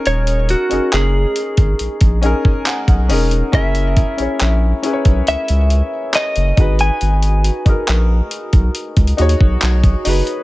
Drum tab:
HH |x-x-x-x-x---x-x-x-x-x---x-x-o-x-|x-x-x-x-x---x-x-x-x-x---x-x-x-x-|x-x-x-x-x---x-x-x-xxxx--x-x-o-x-|
CP |--------x---------------x-------|--------x---------------x-------|--------x---------------x-------|
BD |--------------o---o---o---o-----|o---o---------o-------------o---|------o-------o---o---o---o-----|